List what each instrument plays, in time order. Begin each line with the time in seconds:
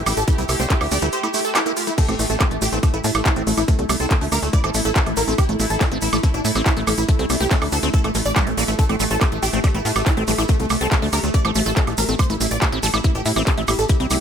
Already playing: synth texture A3 G4
0.06 analog synth bass A1, acid bass A#3, supersaw synth E4, open hi-hat, high woodblock, maracas
0.17 analog synth bass A1, supersaw synth A4, closed hi-hat, maracas
0.28 acid bass A3, supersaw synth E4, kick, closed hi-hat, maracas
0.38 analog synth bass C2, acid bass G3, supersaw synth E4, closed hi-hat
0.49 analog synth bass C2, supersaw synth E4, open hi-hat, high woodblock, maracas
0.60 analog synth bass C2, acid bass A3, supersaw synth C5, closed hi-hat, maracas
0.70 acid bass A#3, supersaw synth E4, kick, clap, closed hi-hat, maracas
0.81 analog synth bass D2, supersaw synth E4, open hi-hat, high woodblock
0.91 analog synth bass D2, acid bass A3, supersaw synth D5, open hi-hat, maracas
1.02 analog synth bass D2, acid bass G3, supersaw synth E4, closed hi-hat, maracas
1.12 supersaw synth C5, closed hi-hat, maracas
1.23 acid bass A3, supersaw synth E4, closed hi-hat, high woodblock
1.34 acid bass A3, supersaw synth E4, open hi-hat, maracas
1.45 supersaw synth A4, closed hi-hat, maracas
1.55 acid bass A#3, supersaw synth E4, clap, closed hi-hat, high woodblock, maracas
1.66 acid bass A#3, supersaw synth E4, closed hi-hat
1.77 supersaw synth F4, open hi-hat, maracas
1.87 acid bass A3, supersaw synth E4, closed hi-hat, maracas
1.98 acid bass A3, synth texture A3 E4, supersaw synth A4, kick, closed hi-hat, crash, maracas
2.09 analog synth bass A1, supersaw synth A3, acid bass C4, closed hi-hat, high woodblock
2.19 analog synth bass A1, supersaw synth A3, open hi-hat, maracas
2.30 analog synth bass A1, acid bass A3, supersaw synth A4, closed hi-hat, maracas
2.40 supersaw synth A3, acid bass A#3, kick, clap, closed hi-hat, high woodblock, maracas
2.51 analog synth bass A1, supersaw synth A3, closed hi-hat
2.62 analog synth bass A1, acid bass A3, supersaw synth G4, open hi-hat, maracas
2.72 analog synth bass A1, supersaw synth A3, acid bass C4, closed hi-hat, maracas
2.83 supersaw synth A3, kick, closed hi-hat, high woodblock, maracas
2.94 analog synth bass A1, acid bass A3, supersaw synth E4, closed hi-hat
3.04 analog synth bass A2, supersaw synth A3, acid bass A#3, open hi-hat, maracas
3.14 analog synth bass A1, supersaw synth A3, closed hi-hat, high woodblock, maracas
3.25 acid bass A3, supersaw synth E4, kick, clap, closed hi-hat, maracas
3.36 analog synth bass A1, supersaw synth A3, acid bass C4, closed hi-hat
3.47 analog synth bass A1, supersaw synth A3, open hi-hat, maracas
3.57 analog synth bass A1, acid bass A3, supersaw synth E4, closed hi-hat, high woodblock, maracas
3.68 supersaw synth A3, acid bass A#3, kick, closed hi-hat, maracas
3.79 analog synth bass C2, supersaw synth A3, closed hi-hat
3.89 analog synth bass C2, supersaw synth A3, acid bass A3, open hi-hat, high woodblock, maracas
4.00 analog synth bass C2, acid bass C4, supersaw synth A4, closed hi-hat, maracas
4.11 supersaw synth A3, kick, clap, closed hi-hat, maracas
4.21 analog synth bass D2, acid bass A3, supersaw synth A3, open hi-hat
4.32 analog synth bass D2, acid bass A#3, supersaw synth A#4, open hi-hat, high woodblock, maracas
4.43 analog synth bass D2, supersaw synth A3, closed hi-hat, maracas
4.53 acid bass A3, supersaw synth D5, kick, closed hi-hat, maracas
4.64 analog synth bass A1, supersaw synth A3, acid bass C4, closed hi-hat, high woodblock
4.74 analog synth bass A1, supersaw synth A3, open hi-hat, maracas
4.85 analog synth bass A1, acid bass A3, supersaw synth A4, closed hi-hat, maracas
4.95 supersaw synth A3, acid bass A#3, kick, clap, closed hi-hat, maracas
5.06 analog synth bass A1, supersaw synth A3, closed hi-hat, high woodblock
5.17 analog synth bass A1, acid bass A3, supersaw synth A#4, open hi-hat, maracas
5.28 analog synth bass A1, supersaw synth A3, acid bass C4, closed hi-hat, maracas
5.38 supersaw synth G4, kick, closed hi-hat, high woodblock, maracas
5.49 analog synth bass A1, supersaw synth A3, acid bass A3, closed hi-hat
5.60 analog synth bass A1, supersaw synth A3, acid bass A#3, open hi-hat, maracas
5.70 analog synth bass A1, supersaw synth A4, closed hi-hat, maracas
5.81 supersaw synth A3, acid bass A3, kick, clap, closed hi-hat, high woodblock, maracas
5.91 analog synth bass A1, supersaw synth A3, acid bass C4, closed hi-hat
6.02 analog synth bass A1, supersaw synth E4, open hi-hat, maracas
6.13 analog synth bass A1, acid bass A3, supersaw synth A3, closed hi-hat, high woodblock, maracas
6.23 supersaw synth A3, acid bass A#3, kick, closed hi-hat, maracas
6.34 analog synth bass A1, supersaw synth D4, closed hi-hat
6.45 analog synth bass A2, acid bass A3, supersaw synth A3, open hi-hat, maracas
6.55 analog synth bass A1, supersaw synth A3, acid bass C4, closed hi-hat, high woodblock, maracas
6.66 supersaw synth E4, kick, clap, closed hi-hat, maracas
6.77 analog synth bass A1, acid bass A3, supersaw synth A3, closed hi-hat
6.87 analog synth bass A1, supersaw synth A3, acid bass A#3, open hi-hat, high woodblock, maracas
6.97 analog synth bass A1, supersaw synth E4, closed hi-hat, maracas
7.08 acid bass A3, supersaw synth A3, kick, closed hi-hat, maracas
7.19 analog synth bass C2, supersaw synth A3, acid bass C4, closed hi-hat
7.30 analog synth bass C2, supersaw synth A3, open hi-hat, high woodblock, maracas
7.40 analog synth bass C2, acid bass A3, supersaw synth G4, maracas
7.51 supersaw synth A3, acid bass A#3, kick, clap, closed hi-hat, maracas
7.62 analog synth bass D2, supersaw synth A3, open hi-hat, high woodblock
7.72 analog synth bass D2, acid bass A3, supersaw synth A4, open hi-hat, maracas
7.82 analog synth bass D2, supersaw synth A3, acid bass C4, closed hi-hat, maracas
7.93 supersaw synth A4, kick, closed hi-hat, maracas
8.04 analog synth bass A1, acid bass A3, supersaw synth A3, closed hi-hat, high woodblock
8.15 analog synth bass A1, supersaw synth A3, acid bass A#3, open hi-hat, maracas
8.25 analog synth bass A1, supersaw synth D5, closed hi-hat, maracas
8.36 acid bass G3, supersaw synth A3, kick, clap, closed hi-hat, high woodblock, maracas
8.47 analog synth bass A1, supersaw synth A3, acid bass E4, closed hi-hat
8.57 analog synth bass A1, acid bass A#3, supersaw synth D5, open hi-hat, maracas
8.68 analog synth bass A1, supersaw synth A3, acid bass E4, closed hi-hat, maracas
8.79 acid bass A3, synth texture G4, supersaw synth A4, kick, closed hi-hat, maracas
8.89 analog synth bass A1, supersaw synth A3, acid bass C4, closed hi-hat, high woodblock
9.00 analog synth bass A1, acid bass G3, supersaw synth A3, open hi-hat, maracas
9.10 analog synth bass A1, acid bass A3, supersaw synth A4, closed hi-hat, maracas
9.21 supersaw synth A3, acid bass A#3, kick, clap, closed hi-hat, high woodblock, maracas
9.32 analog synth bass A1, supersaw synth A3, closed hi-hat
9.43 analog synth bass A1, acid bass A3, supersaw synth G4, open hi-hat, maracas
9.53 analog synth bass A1, supersaw synth A3, acid bass C4, closed hi-hat, maracas
9.64 acid bass G3, supersaw synth A3, kick, closed hi-hat, high woodblock, maracas
9.74 analog synth bass A1, acid bass A3, supersaw synth E4, closed hi-hat
9.85 analog synth bass A2, supersaw synth A3, acid bass A#3, open hi-hat, maracas
9.96 analog synth bass A1, supersaw synth A3, closed hi-hat, high woodblock, maracas
10.06 acid bass A3, supersaw synth E4, kick, clap, closed hi-hat, maracas
10.17 analog synth bass A1, supersaw synth A3, acid bass C4, closed hi-hat
10.28 analog synth bass A1, acid bass G3, supersaw synth A3, open hi-hat, maracas
10.38 analog synth bass A1, acid bass A3, supersaw synth E4, closed hi-hat, high woodblock, maracas
10.48 supersaw synth A3, acid bass A#3, kick, closed hi-hat, maracas
10.60 analog synth bass C2, supersaw synth A3, closed hi-hat
10.70 analog synth bass C2, acid bass A3, supersaw synth A3, open hi-hat, high woodblock, maracas
10.81 analog synth bass C2, acid bass C4, supersaw synth A4, closed hi-hat, maracas
10.91 acid bass G3, supersaw synth A3, kick, clap, closed hi-hat, maracas
11.02 analog synth bass D2, acid bass A3, supersaw synth A3, open hi-hat
11.13 analog synth bass D2, acid bass A#3, supersaw synth A#4, open hi-hat, high woodblock, maracas
11.23 analog synth bass D2, supersaw synth A3, closed hi-hat, maracas
11.34 acid bass A3, supersaw synth D5, kick, closed hi-hat, maracas
11.45 analog synth bass A1, supersaw synth A3, acid bass C4, closed hi-hat, high woodblock
11.55 analog synth bass A1, acid bass G3, supersaw synth A3, open hi-hat, maracas
11.66 analog synth bass A1, acid bass A3, supersaw synth A4, closed hi-hat, maracas
11.77 supersaw synth A3, acid bass A#3, kick, clap, closed hi-hat, maracas
11.87 analog synth bass A1, supersaw synth A3, closed hi-hat, high woodblock
11.98 analog synth bass A1, acid bass A3, supersaw synth A#4, open hi-hat, maracas
12.09 analog synth bass A1, supersaw synth A3, acid bass C4, closed hi-hat, maracas
12.19 acid bass G3, supersaw synth C5, kick, closed hi-hat, high woodblock, maracas
12.30 analog synth bass A1, acid bass A3, supersaw synth E4, closed hi-hat
12.40 analog synth bass A1, acid bass A#3, supersaw synth E4, open hi-hat, maracas
12.50 analog synth bass A1, supersaw synth D5, closed hi-hat, maracas
12.62 acid bass A3, supersaw synth E4, kick, clap, closed hi-hat, high woodblock, maracas
12.72 analog synth bass A1, acid bass C4, supersaw synth E4, closed hi-hat
12.83 analog synth bass A1, acid bass G3, supersaw synth A4, open hi-hat, maracas
12.94 analog synth bass A1, acid bass A3, supersaw synth E4, closed hi-hat, high woodblock, maracas
13.04 acid bass A#3, supersaw synth E4, kick, closed hi-hat, maracas
13.15 analog synth bass A1, supersaw synth G4, closed hi-hat
13.25 analog synth bass A2, acid bass A3, supersaw synth E4, open hi-hat, maracas
13.36 analog synth bass A1, acid bass C4, supersaw synth E4, closed hi-hat, high woodblock, maracas
13.47 acid bass G3, supersaw synth A4, kick, clap, closed hi-hat, maracas
13.57 analog synth bass A1, acid bass A3, supersaw synth E4, closed hi-hat
13.68 analog synth bass A1, acid bass A#3, supersaw synth E4, open hi-hat, high woodblock, maracas
13.79 analog synth bass A1, supersaw synth A4, closed hi-hat, maracas
13.89 acid bass A3, supersaw synth E4, kick, closed hi-hat, maracas
14.00 analog synth bass C2, acid bass C4, supersaw synth E4, closed hi-hat
14.10 analog synth bass C2, acid bass G3, supersaw synth E4, open hi-hat, high woodblock, maracas